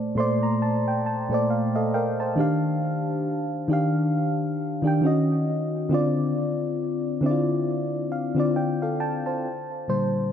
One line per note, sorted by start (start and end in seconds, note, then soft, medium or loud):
0.00 0.15 A#2 medium
0.00 0.17 A3 medium
0.00 0.18 C5 medium
0.00 0.20 D5 loud
0.00 0.62 A5 medium
0.15 1.20 A#2 medium
0.15 1.21 A3 medium
0.15 1.22 C5 medium
0.15 0.41 C6 medium
0.20 1.23 D5 medium
0.43 0.60 A#5 medium
0.62 0.85 A5 medium
0.88 1.04 G5 medium
1.06 1.47 A5 medium
1.29 2.30 A#2 medium
1.29 2.31 A3 medium
1.29 1.50 C5 medium
1.34 1.51 D5 medium
1.50 1.73 F5 medium
1.75 1.93 A4 medium
1.75 1.92 D#5 medium
1.75 1.93 F5 medium
1.94 2.18 A#4 medium
1.94 2.35 F5 medium
1.94 2.18 G5 medium
2.20 2.62 C5 medium
2.20 2.61 A5 medium
2.36 3.61 D#3 medium
2.36 3.61 D4 medium
2.36 3.62 G4 medium
2.40 3.63 F5 medium
3.68 4.73 D#3 medium
3.68 4.74 D4 medium
3.68 4.75 G4 medium
3.73 4.76 F5 medium
4.82 5.00 D#3 medium
4.82 5.02 D4 medium
4.82 5.03 G4 medium
4.87 5.04 G5 medium
5.01 5.84 D#3 medium
5.01 5.85 C#4 medium
5.01 5.86 F#4 medium
5.06 5.87 D#5 medium
5.89 7.14 D3 medium
5.89 7.14 C4 medium
5.89 7.15 F4 medium
5.94 7.16 D5 medium
7.21 8.26 D3 medium
7.21 8.27 C4 medium
7.21 7.31 E4 medium
7.26 8.29 D5 medium
7.31 8.31 F4 medium
8.12 8.52 F5 medium
8.35 9.36 D3 medium
8.35 9.36 C4 medium
8.35 8.56 F4 medium
8.40 8.55 D5 medium
8.56 8.80 F4 soft
8.56 8.80 D5 medium
8.56 8.97 G5 medium
8.82 9.00 A4 medium
8.82 8.99 F5 medium
9.00 9.24 G5 medium
9.00 9.25 A5 medium
9.26 9.68 C5 medium
9.26 9.67 A5 medium
9.88 10.32 A#2 soft
9.88 10.32 D3 soft
9.88 10.32 G3 medium
9.88 10.32 C5 medium